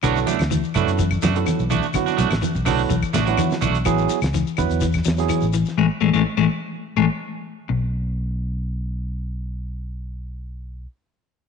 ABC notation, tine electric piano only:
X:1
M:4/4
L:1/16
Q:1/4=125
K:Bdor
V:1 name="Tine electric piano"
[F,B,EA]3 z3 [F,B,EA]2 z3 [F,B,EA]2 z3 | [F,B,EF]3 z3 [F,B,EA]2 z3 [F,B,EF]2 z3 | [F,B,EG]3 z3 [F,B,EB]2 z3 [F,B,EG]2 z3 | z16 |
z16 | z16 |]